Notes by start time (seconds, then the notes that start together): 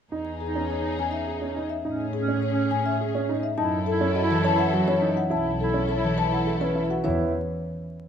0.12 E2 D#4 G#4
0.41 D#4 G#4
0.55 C#4
0.70 C#5
0.75 D#4
0.99 C#4 G#5
1.07 D#4
1.12 E5
1.27 G#4
1.38 C#4 D#4
1.56 D#4
1.70 E5
1.85 A2 C#4 D#4 G#4
2.13 G#4
2.17 C#4
2.28 C#4
2.42 C#5
2.48 C#4
2.71 C#4 G#5
2.80 C#4
2.86 E5
3.00 G#4
3.12 C#4
3.29 D#4
3.43 E5
3.58 F#2 D#4 E4 A4 A5
3.86 E4 A4
4.01 C#4
4.15 F#4 D#5
4.21 E4
4.30 E3
4.44 C#4 C#5 A5
4.54 E4
4.59 F#5
4.73 F#3 F#4
4.85 C#4 E4 C#5
5.02 D#4
5.16 E4 F#5
5.30 B1 E4 A4 A5
5.61 E4 A4
5.74 C#4
5.88 A4 C#5
5.95 E4
6.03 E3
6.18 C#4 C#5 A5
6.26 E4
6.33 F#5
6.47 A3 A4
6.59 C#4 E4 B4
6.75 E4
6.90 F#4 F#5
7.04 E2 E3 E4 C#5